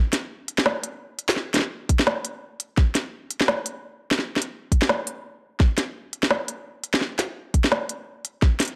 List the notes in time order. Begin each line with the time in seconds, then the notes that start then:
0.13 snare, closed hi-hat
0.48 closed hi-hat
0.58 snare
0.66 snare
0.83 closed hi-hat
1.19 closed hi-hat
1.29 snare
1.36 snare
1.54 snare, closed hi-hat
1.56 snare
1.59 snare
1.62 snare
1.89 kick, closed hi-hat
1.99 snare
2.07 snare
2.25 closed hi-hat
2.60 closed hi-hat
2.77 kick, snare
2.95 snare, closed hi-hat
3.31 closed hi-hat
3.41 snare
3.48 snare
3.66 closed hi-hat
4.11 snare
4.19 snare
4.36 snare
4.42 closed hi-hat
4.72 kick, closed hi-hat
4.82 snare
4.89 snare
5.07 closed hi-hat
5.60 kick, snare
5.78 snare, closed hi-hat
6.13 closed hi-hat
6.23 snare
6.31 snare
6.48 closed hi-hat
6.84 closed hi-hat
6.94 snare
7.01 snare
7.19 snare, closed hi-hat
7.54 kick, closed hi-hat
7.64 snare
7.72 snare
7.89 closed hi-hat
8.25 closed hi-hat
8.42 kick, snare
8.60 snare, closed hi-hat
8.62 closed hi-hat
8.65 closed hi-hat
8.68 closed hi-hat